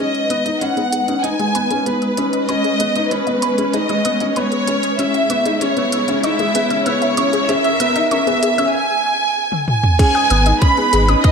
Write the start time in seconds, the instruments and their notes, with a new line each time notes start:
0.00 string section G#3 D#4 B4, felt piano C#4, violin section D#5
0.15 synth arpeggio sound D#6, closed hi-hat
0.30 sub bass G#1, felt piano B3, synth arpeggio sound D#6, closed hi-hat
0.46 felt piano D#4, synth arpeggio sound D#5, closed hi-hat
0.61 felt piano C#4, violin section F#5, synth arpeggio sound B5, closed hi-hat
0.77 felt piano B3, synth arpeggio sound G#4, closed hi-hat
0.92 sub bass G#1, synth arpeggio sound G#4, closed hi-hat
1.08 felt piano C#4, synth arpeggio sound D#6, closed hi-hat
1.24 felt piano D#4, violin section G#5, synth arpeggio sound D#6, closed hi-hat
1.39 felt piano G#3, synth arpeggio sound D#5, closed hi-hat
1.55 sub bass G#1, felt piano B3, synth arpeggio sound B5, closed hi-hat
1.71 felt piano C#4, synth arpeggio sound G#4, closed hi-hat
1.86 felt piano B3, synth arpeggio sound G#4, violin section B4, closed hi-hat
2.02 synth arpeggio sound D#6, closed hi-hat
2.17 sub bass G#1, felt piano C#4, synth arpeggio sound D#6, closed hi-hat
2.33 synth arpeggio sound D#5, closed hi-hat
2.49 string section C#4, felt piano C#4, violin section D#5, synth arpeggio sound B5, closed hi-hat
2.64 synth arpeggio sound G#4, closed hi-hat
2.80 sub bass G#1, felt piano B3, synth arpeggio sound G#4, closed hi-hat
2.96 felt piano D#4, synth arpeggio sound D#6, closed hi-hat
3.11 felt piano C#4, violin section B4, synth arpeggio sound D#6, closed hi-hat
3.27 felt piano B3, synth arpeggio sound D#5, closed hi-hat
3.42 sub bass G#1, synth arpeggio sound B5, closed hi-hat
3.58 felt piano C#4, synth arpeggio sound G#4, closed hi-hat
3.74 felt piano D#4, synth arpeggio sound G#4, violin section D#5, closed hi-hat
3.89 felt piano G#3, synth arpeggio sound D#6, closed hi-hat
4.05 sub bass G#1, felt piano B3, synth arpeggio sound D#6, closed hi-hat
4.20 felt piano C#4, synth arpeggio sound D#5, closed hi-hat
4.30 violin section D#5
4.36 felt piano B3, violin section C#5, synth arpeggio sound B5, closed hi-hat
4.52 synth arpeggio sound G#4, closed hi-hat
4.67 sub bass G#1, felt piano C#4, synth arpeggio sound G#4, closed hi-hat
4.83 synth arpeggio sound D#6, closed hi-hat
4.99 string section C#3 E4, felt piano C#4, violin section E5, synth arpeggio sound E6, closed hi-hat
5.14 synth arpeggio sound E5, closed hi-hat
5.30 sub bass C#2, felt piano B3, synth arpeggio sound C#6, closed hi-hat
5.45 felt piano D#4, synth arpeggio sound G#4, closed hi-hat
5.61 felt piano C#4, synth arpeggio sound G#4, violin section C#5, closed hi-hat
5.77 felt piano B3, synth arpeggio sound E6, closed hi-hat
5.92 sub bass C#2, synth arpeggio sound E6, closed hi-hat
6.08 felt piano C#4, synth arpeggio sound E5, closed hi-hat
6.23 felt piano D#4, violin section E5, synth arpeggio sound C#6, closed hi-hat
6.39 felt piano G#3, synth arpeggio sound G#4, closed hi-hat
6.55 sub bass C#2, felt piano B3, synth arpeggio sound G#4, closed hi-hat
6.70 felt piano C#4, synth arpeggio sound E6, closed hi-hat
6.86 felt piano B3, violin section C#5, synth arpeggio sound E6, closed hi-hat
7.02 synth arpeggio sound E5, closed hi-hat
7.17 sub bass C#2, felt piano C#4, synth arpeggio sound C#6, closed hi-hat
7.33 synth arpeggio sound G#4, closed hi-hat
7.49 felt piano C#4, synth arpeggio sound G#4, string section A#4, violin section E5, closed hi-hat
7.64 synth arpeggio sound E6, closed hi-hat
7.80 sub bass C#2, felt piano B3, synth arpeggio sound E6, closed hi-hat
7.96 felt piano D#4, synth arpeggio sound E5, closed hi-hat
8.11 felt piano C#4, violin section E5, synth arpeggio sound C#6, closed hi-hat
8.27 felt piano B3, synth arpeggio sound G#4, closed hi-hat
8.43 sub bass C#2, synth arpeggio sound G#4, closed hi-hat
8.58 felt piano C#4, synth arpeggio sound E6, closed hi-hat
8.75 violin section G#5
9.52 high tom
9.68 violin section G#5, mid tom
9.84 mid tom
9.99 string section G#3 D#4 B4, felt piano C#4, synth arpeggio sound G#4, violin section G#5, kick, closed hi-hat, crash
10.15 synth arpeggio sound D#6, closed hi-hat, low woodblock
10.30 sub bass G#1, felt piano B3, synth arpeggio sound D#6, closed hi-hat
10.46 felt piano D#4, synth arpeggio sound D#5, closed hi-hat
10.62 felt piano C#4, synth arpeggio sound B5, violin section B5, kick, closed hi-hat
10.77 felt piano B3, synth arpeggio sound G#4, closed hi-hat
10.93 sub bass G#1, synth arpeggio sound G#4, closed hi-hat
11.08 felt piano C#4, synth arpeggio sound D#6, closed hi-hat
11.24 felt piano D#4, violin section D#5, synth arpeggio sound D#6, kick, closed hi-hat